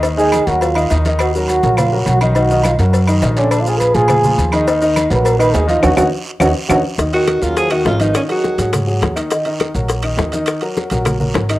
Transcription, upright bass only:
X:1
M:4/4
L:1/8
Q:1/4=207
K:Ebm
V:1 name="Upright bass" clef=bass
E,,3 E,,3 E,,2- | E,,3 B,,,3 C,,2- | C,,3 ^F,,3 ^A,,,2- | ^A,,,3 B,,3 E,,2- |
E,,3 B,,,3 E,,2 | E,, E,, z2 E,, z E,, z | E,,3 E,,3 A,,,2 | z3 A,,3 E,,2 |
z3 B,,,3 E,,2 | z3 B,,,3 A,,,2 |]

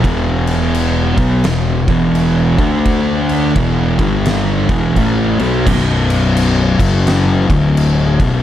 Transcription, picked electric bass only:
X:1
M:4/4
L:1/8
Q:"Swing" 1/4=85
K:Edor
V:1 name="Picked electric bass" clef=bass
E,,,3 B,,, E,,, E,,,2 D,,- | D,,2 E,,, G,,,2 E,,, A,,, B,,, | B,,,,3 F,,,2 D,,,2 B,,,, |]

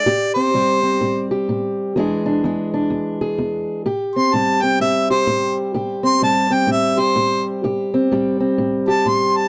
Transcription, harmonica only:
X:1
M:4/4
L:1/8
Q:"Swing" 1/4=127
K:Am
V:1 name="Harmonica"
d c4 z3 | z8 | z c' a g e c2 z | z c' a g e c2 z |
z4 z a c' a |]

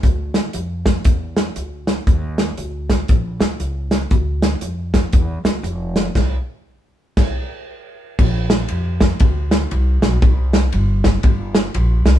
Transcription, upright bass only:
X:1
M:4/4
L:1/8
Q:"Swing" 1/4=118
K:Dm
V:1 name="Upright bass" clef=bass
D,,2 F,,2 E,,2 D,,2 | _E,,2 D,,2 B,,, D,, _D,,2 | D,,2 F,,2 E,, D,, F,,,2 | C,, z3 C,, z3 |
B,,,2 F,,2 D,,2 C,, =B,,, | C,,2 G,,,2 G,,,2 B,,, C,, |]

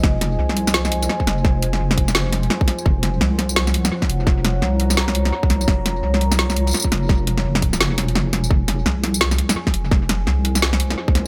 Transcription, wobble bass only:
X:1
M:4/4
L:1/8
Q:"Swing 16ths" 1/4=170
K:Fphr
V:1 name="Wobble bass" clef=bass
F,,,2 C,,4 z F,,,- | F,,,2 F,,,4 z2 | F,,,2 C,,4 z F,,,- | F,,,2 C,,4 z C,, |
F,,,2 C,,4 z F,,,- | F,,,2 F,,,2 F,,,4 | F,,,2 C,,4 z F,,,- | F,,,2 C,,4 z C,, |]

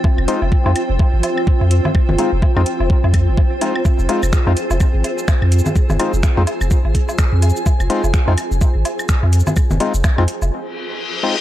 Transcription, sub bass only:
X:1
M:4/4
L:1/16
Q:"Swing 16ths" 1/4=126
K:Fm
V:1 name="Sub bass" clef=bass
z F,,, z F,,, z F,, z F,,, z A,,, z3 F,,2 z | z F,,, z F,,, z F,, z F,,, z F,,2 F,,, z4 | z F,,, z F,,, z F,, z F,,, z A,,, z3 F,,2 z | z F,,, z F,,, z F,, z F,,, z A,,, z3 F,,2 z |
z F,,, z F,,, z F,, z F,,, z A,,, z3 F,,2 z | z F,,, z F,,, z F,, z F,,, z8 |]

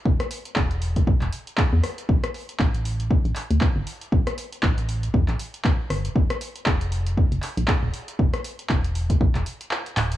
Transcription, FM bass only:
X:1
M:4/4
L:1/16
Q:"Swing 16ths" 1/4=118
K:Ephr
V:1 name="FM bass" clef=bass
E,,, z3 E,,,4 B,,, E,,, z3 E,, z2 | A,,, z3 A,,,4- A,,, A,,, z D,, z G,,, z2 | A,,, z3 A,,,4 E,, A,,, z4 G,,, z | F,,, z3 F,,,4- F,,, F,,, z _B,,, z _E,,, z2 |
E,,, z3 E,,,4 B,,, E,,, z4 D,,, z |]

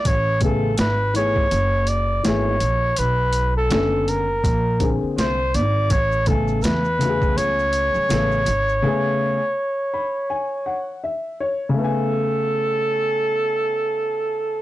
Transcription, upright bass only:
X:1
M:4/4
L:1/16
Q:"Swing 16ths" 1/4=82
K:A
V:1 name="Upright bass" clef=bass
A,,,4 G,,,4 F,,,4 G,,,2 _B,,,2 | B,,,4 F,,,4 _B,,,3 z =C,,2 _A,,,2 | A,,,4 E,,4 C,,3 z A,,,2 G,,,2 | z16 |
z16 |]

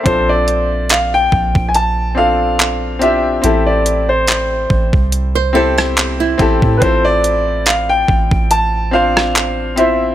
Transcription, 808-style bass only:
X:1
M:4/4
L:1/16
Q:"Swing 16ths" 1/4=71
K:Bblyd
V:1 name="808-style bass" clef=bass
B,,,6 B,,, B,,,8- B,,, | A,,,6 A,,, C,,6- C,, A,,, A,, | A,,,6 A,,, A,,,8- A,,, |]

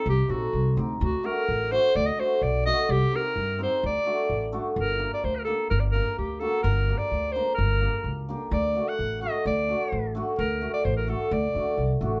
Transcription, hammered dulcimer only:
X:1
M:2/4
L:1/16
Q:1/4=128
K:none
V:1 name="Hammered dulcimer"
z2 [C_EA] z3 [CEG] z | z2 [A,D^F] z3 [A,DF] z | z2 [A,D^F] z3 [A,DF] z | z2 [C_EG] z3 [CEG] z |
z2 [A,D^F] z3 [A,DF] z | z2 [_B,DG] z3 [B,DG] z | z2 [_B,DG] z3 [B,D^F] z | z2 [_B,DG] z3 [B,D_B] z |
z2 [_B,DG] z3 [B,DG] z | z2 [A,D^F] z3 [A,DF] z | z2 [A,D^F] z3 [A,DF] z | z2 [A,D^F] z3 [A,DF] z |
z2 [A,D^F] z3 [A,DF] z |]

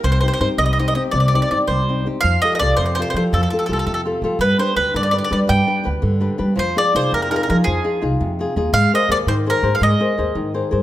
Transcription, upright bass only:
X:1
M:6/8
L:1/16
Q:3/8=111
K:Fdor
V:1 name="Upright bass" clef=bass
C,,4 G,, z C,,6 | C,,4 G,, z C,,6 | F,,2 z2 C,,2 F,,4 F,2 | F,,2 z2 C,,2 F,,4 F,2 |
G,,2 z2 D,,2 G,,4 G,2 | G,,2 z2 D,,2 G,,4 G,2 | F,,2 z2 C,,2 F,,4 F,2 | F,,2 z2 C,,2 F,,4 E,,2 |
A,,2 z2 E,,2 A,,4 A,,2 | A,,2 z2 E,,2 A,,4 G,,2 |]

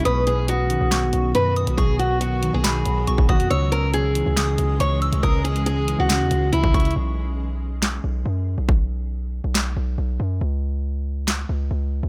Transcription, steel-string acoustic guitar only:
X:1
M:4/4
L:1/16
Q:1/4=139
K:B
V:1 name="Steel-string acoustic guitar"
B2 G2 F8 B2 z2 | G2 F2 F3 G6- G F2 | c2 A2 G8 c2 z2 | A2 G2 G3 F4- F E4 |
z16 | z16 | z16 |]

